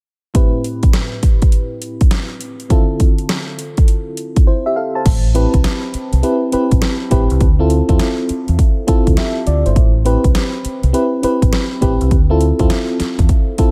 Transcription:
0.34 fm electric piano A2 C4 E4 G4 B4, kick, closed hi-hat
0.64 closed hi-hat
0.83 kick, closed hi-hat
0.93 snare, closed hi-hat
1.23 kick, closed hi-hat
1.42 kick, closed hi-hat
1.52 closed hi-hat
1.82 closed hi-hat
2.01 kick, closed hi-hat
2.11 snare, closed hi-hat
2.41 closed hi-hat
2.60 closed hi-hat
2.69 fm electric piano D3 C4 E4 F4 A4, kick, closed hi-hat
3.00 kick, closed hi-hat
3.18 closed hi-hat
3.29 snare, closed hi-hat
3.59 closed hi-hat
3.77 kick, closed hi-hat
3.88 closed hi-hat
4.17 closed hi-hat
4.36 kick, closed hi-hat
4.47 fm electric piano E4 C5
4.66 fm electric piano G4 E5
4.76 fm electric piano A4 F5
4.95 fm electric piano C5 A5
5.06 fingered electric bass A1, kick, closed hi-hat, crash
5.34 fm electric piano C4 E4 G4 B4, closed hi-hat
5.54 fingered electric bass C2, kick, closed hi-hat
5.64 snare, closed hi-hat
5.94 muted fingered electric bass stroke, closed hi-hat
6.13 fingered electric bass C2, closed hi-hat
6.23 fm electric piano C4 E4 G4 B4, closed hi-hat
6.52 fm electric piano C4 E4 G4 B4, muted fingered electric bass stroke, closed hi-hat
6.71 fingered electric bass A1, kick, closed hi-hat
6.82 snare, closed hi-hat
7.11 fingered electric bass A1, fm electric piano C4 E4 G4 B4, kick, closed hi-hat
7.30 fingered electric bass C2, closed hi-hat
7.41 fingered electric bass D2, kick, closed hi-hat
7.59 fm electric piano C4 E4 F4 A4
7.70 closed hi-hat
7.88 fingered electric bass E2, fm electric piano C4 E4 F4 A4, kick, closed hi-hat
7.99 snare, closed hi-hat
8.29 muted fingered electric bass stroke, closed hi-hat
8.48 fingered electric bass E2, closed hi-hat
8.59 kick, closed hi-hat
8.87 fm electric piano C4 E4 F4 A4, muted fingered electric bass stroke, kick, closed hi-hat
9.07 fingered electric bass D2, kick, closed hi-hat
9.17 fm electric piano G4 E5, snare, closed hi-hat
9.47 fingered electric bass D2, fm electric piano F4 D5, closed hi-hat
9.66 fingered electric bass G1, fm electric piano E4 C5, closed hi-hat
9.76 fingered electric bass A1, kick, closed hi-hat
10.05 fm electric piano C4 E4 G4 B4, closed hi-hat
10.24 fingered electric bass C2, kick, closed hi-hat
10.35 snare, closed hi-hat
10.65 muted fingered electric bass stroke, closed hi-hat
10.83 fingered electric bass C2, closed hi-hat
10.93 fm electric piano C4 E4 G4 B4, closed hi-hat
11.23 fm electric piano C4 E4 G4 B4, muted fingered electric bass stroke, closed hi-hat
11.42 fingered electric bass A1, kick, closed hi-hat
11.53 snare, closed hi-hat
11.81 fingered electric bass A1, fm electric piano C4 E4 G4 B4, kick, closed hi-hat
12.01 fingered electric bass C2, closed hi-hat
12.11 fingered electric bass D2, kick, closed hi-hat
12.30 fm electric piano C4 E4 F4 A4
12.41 closed hi-hat
12.59 fingered electric bass E2, fm electric piano C4 E4 F4 A4, kick, closed hi-hat
12.70 snare, closed hi-hat
13.00 muted fingered electric bass stroke, snare, closed hi-hat
13.19 fingered electric bass E2, kick, closed hi-hat
13.29 kick, closed hi-hat
13.58 fm electric piano C4 E4 F4 A4, muted fingered electric bass stroke, kick, closed hi-hat

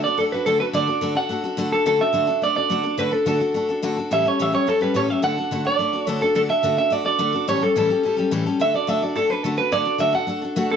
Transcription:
0.04 steel-string acoustic guitar D4 F#4 A4, clean electric guitar D5
0.18 steel-string acoustic guitar A3 D4 F#4 A4, clean electric guitar A4
0.32 steel-string acoustic guitar D4 F#4 A4, clean electric guitar B4
0.46 steel-string acoustic guitar D3 A3 D4 F#4 A4, clean electric guitar A4
0.60 steel-string acoustic guitar D4 F#4 A4, clean electric guitar B4
0.73 steel-string acoustic guitar D3 A3 D4 F#4 A4, clean electric guitar D5
0.87 steel-string acoustic guitar D4 F#4 A4
1.01 steel-string acoustic guitar D3 A3 D4 F#4 A4
1.15 steel-string acoustic guitar D4 F#4 A4, clean electric guitar F#5
1.29 steel-string acoustic guitar A3 D4 F#4 A4
1.44 steel-string acoustic guitar D4 F#4 A4
1.57 steel-string acoustic guitar D3 A3 D4 F#4 A4
1.72 steel-string acoustic guitar D4 F#4 A4, clean electric guitar A4
1.86 steel-string acoustic guitar D3 A3 D4 F#4 A4, clean electric guitar A4
1.99 steel-string acoustic guitar D4 F#4 A4, clean electric guitar E5
2.13 steel-string acoustic guitar D3 A3 D4 F#4 A4
2.27 steel-string acoustic guitar D4 F#4 A4
2.42 steel-string acoustic guitar A3 D4 F#4 A4, clean electric guitar D5
2.55 steel-string acoustic guitar D4 F#4 A4, clean electric guitar D5
2.70 steel-string acoustic guitar D3 A3 D4 F#4 A4
2.83 steel-string acoustic guitar D4 F#4 A4
2.98 steel-string acoustic guitar D3 A3 D4 F#4 A4, clean electric guitar B4
3.11 steel-string acoustic guitar D4 F#4 A4, clean electric guitar A4
3.26 steel-string acoustic guitar D3 A3 D4 F#4 A4, clean electric guitar A4
3.40 steel-string acoustic guitar D4 F#4 A4
3.54 steel-string acoustic guitar A3 D4 F#4 A4
3.69 steel-string acoustic guitar D4 F#4 A4
3.83 steel-string acoustic guitar D3 A3 D4 F#4 A4
3.97 steel-string acoustic guitar D4 F#4 A4
4.11 steel-string acoustic guitar A2 E3 G3 C#4 G4 A4, clean electric guitar E5
4.25 steel-string acoustic guitar G3 C#4 G4 A4, clean electric guitar C#5
4.39 steel-string acoustic guitar A2 E3 G3 C#4 G4 A4, clean electric guitar E5
4.52 steel-string acoustic guitar G3 C#4 G4 A4, clean electric guitar C#5
4.67 steel-string acoustic guitar G3 C#4 G4 A4, clean electric guitar A4
4.81 steel-string acoustic guitar G3 C#4 G4 A4, clean electric guitar B4
4.94 steel-string acoustic guitar A2 E3 G3 C#4 G4 A4, clean electric guitar C#5
5.08 steel-string acoustic guitar G3 C#4 G4 A4, clean electric guitar E5
5.22 steel-string acoustic guitar D3 A3 D4 F#4 A4, clean electric guitar F#5
5.38 steel-string acoustic guitar D4 F#4 A4
5.51 steel-string acoustic guitar D3 A3 D4 F#4 A4
5.65 steel-string acoustic guitar D4 F#4 A4, clean electric guitar D5
5.79 steel-string acoustic guitar A3 D4 F#4 A4
5.93 steel-string acoustic guitar D4 F#4 A4
6.04 steel-string acoustic guitar D3 A3, clean electric guitar C#5
6.08 steel-string acoustic guitar D4 F#4 A4
6.21 steel-string acoustic guitar D4 F#4 A4, clean electric guitar A4
6.35 steel-string acoustic guitar D3 A3 D4 F#4 A4, clean electric guitar A4
6.49 steel-string acoustic guitar D4 F#4 A4, clean electric guitar E5
6.63 steel-string acoustic guitar D3 A3 D4 F#4 A4
6.77 steel-string acoustic guitar D4 F#4 A4, clean electric guitar E5
6.90 steel-string acoustic guitar A3 D4 F#4 A4, clean electric guitar D5
7.05 steel-string acoustic guitar D4 F#4 A4, clean electric guitar D5
7.19 steel-string acoustic guitar D3 A3 D4 F#4 A4
7.33 steel-string acoustic guitar D4 F#4 A4
7.47 steel-string acoustic guitar A2 E3 G3 C#4 G4 A4, clean electric guitar C#5
7.61 steel-string acoustic guitar G3 C#4 G4 A4, clean electric guitar A4
7.76 steel-string acoustic guitar A2 E3 G3 C#4 G4 A4, clean electric guitar A4
7.90 steel-string acoustic guitar G3 C#4 G4 A4
8.03 steel-string acoustic guitar G3 C#4 G4 A4
8.17 steel-string acoustic guitar G3 C#4 G4 A4
8.31 steel-string acoustic guitar A2 E3 G3 C#4 G4 A4
8.46 steel-string acoustic guitar G3 C#4 G4 A4
8.60 steel-string acoustic guitar D3 A3 D4 F#4 A4, clean electric guitar E5
8.74 steel-string acoustic guitar D4 F#4 A4, clean electric guitar D5
8.87 steel-string acoustic guitar D3 A3 D4 F#4 A4, clean electric guitar E5
9.02 steel-string acoustic guitar D4 F#4 A4, clean electric guitar D5
9.15 steel-string acoustic guitar A3 D4 F#4 A4, clean electric guitar A4
9.30 steel-string acoustic guitar D4 F#4 A4, clean electric guitar B4
9.43 steel-string acoustic guitar D3 A3 D4 F#4 A4, clean electric guitar A4
9.57 steel-string acoustic guitar D4 F#4 A4, clean electric guitar B4
9.72 steel-string acoustic guitar D3 A3 D4 F#4 A4, clean electric guitar D5
9.85 steel-string acoustic guitar D4 F#4 A4
9.98 steel-string acoustic guitar D3 A3 D4 F#4 A4, clean electric guitar E5
10.13 steel-string acoustic guitar D4 F#4 A4, clean electric guitar F#5
10.27 steel-string acoustic guitar A3 D4 F#4 A4
10.42 steel-string acoustic guitar D4 F#4 A4
10.56 steel-string acoustic guitar D3 A3 D4 F#4 A4
10.70 steel-string acoustic guitar D4 F#4 A4, clean electric guitar A4

